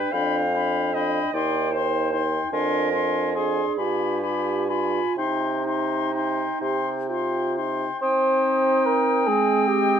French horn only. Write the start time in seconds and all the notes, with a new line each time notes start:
Already playing: D4
0.14 D4
0.56 D4
0.95 D4
1.34 D#4
1.73 D#4
2.14 D#4
2.53 D4
2.95 D4
3.36 D4
3.79 F4
4.25 F4
4.69 F4
5.18 D#4
5.66 D#4
6.14 D#4
6.63 G4
7.09 F4
7.59 D#4
8.03 C4
9.27 G#3